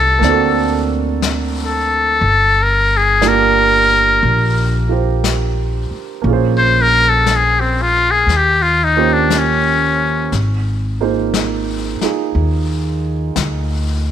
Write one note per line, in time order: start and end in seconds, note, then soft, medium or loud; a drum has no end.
0.00 0.19 C2 medium
0.00 0.23 A3 soft
0.00 0.20 C4 soft
0.00 0.24 D#4 soft
0.00 0.24 G4 soft
0.00 0.25 A4 medium
0.00 0.93 A4 medium
0.19 2.18 D2 medium
0.19 2.20 A#3 medium
0.19 2.22 C4 medium
0.19 brush sweep soft
0.19 snare soft
0.24 2.23 D4 medium
0.24 2.25 F#4 soft
0.30 2.26 A4 medium
1.22 brush sweep soft
1.22 snare medium
1.22 hi-hat pedal medium
1.64 2.64 A4 medium
2.21 4.18 G1 medium
2.21 brush sweep soft
2.63 2.98 A#4 medium
2.97 3.30 G#4 medium
3.21 6.20 A#3 medium
3.21 6.24 D4 soft
3.21 4.88 F4 soft
3.21 4.89 G4 medium
3.21 brush sweep soft
3.21 snare soft
3.21 hi-hat pedal medium
3.26 4.90 A#4 medium
3.26 4.93 A#4 medium
4.23 5.87 A#1 medium
4.23 brush sweep soft
4.89 6.24 F4 soft
4.89 6.25 G4 soft
4.89 6.25 A#4 soft
4.89 6.26 C5 soft
5.24 brush sweep soft
5.24 snare medium
5.24 hi-hat pedal medium
5.91 muted upright bass stroke soft
6.22 8.23 A#1 medium
6.22 8.26 A#3 medium
6.22 8.28 C#4 soft
6.22 brush sweep soft
6.27 8.29 F4 soft
6.27 8.30 G#4 soft
6.33 8.32 C5 medium
6.57 6.83 C5 medium
6.82 7.10 A#4 medium
7.09 7.37 A4 medium
7.26 brush sweep soft
7.26 snare soft
7.26 hi-hat pedal soft
7.36 7.62 G#4 medium
7.60 7.83 C4 medium
7.82 8.12 F4 medium
8.11 8.38 G#4 medium
8.27 10.27 D#2 medium
8.27 brush sweep soft
8.27 snare soft
8.36 8.64 G4 medium
8.62 8.86 F4 medium
8.84 9.15 D#4 medium
8.97 10.32 A#3 medium
8.97 10.32 C#4 soft
8.97 10.32 F4 soft
8.97 10.33 G4 soft
8.97 10.33 C5 medium
9.13 9.40 D4 medium
9.30 brush sweep soft
9.30 snare soft
9.30 hi-hat pedal medium
9.38 10.36 C#4 medium
10.32 11.97 G#1 medium
10.32 brush sweep soft
10.32 snare soft
11.01 14.12 A#3 medium
11.01 12.00 D#4 soft
11.01 12.01 F4 soft
11.01 12.03 G#4 soft
11.01 14.12 C5 medium
11.34 brush sweep soft
11.34 snare medium
11.34 hi-hat pedal medium
12.01 14.12 D#4 soft
12.01 14.12 F4 soft
12.01 14.12 G#4 medium
12.01 muted upright bass stroke soft
12.01 snare soft
12.35 13.32 D#2 medium
12.35 brush sweep soft
13.36 14.12 D2 medium
13.36 brush sweep soft
13.36 snare medium
13.36 hi-hat pedal medium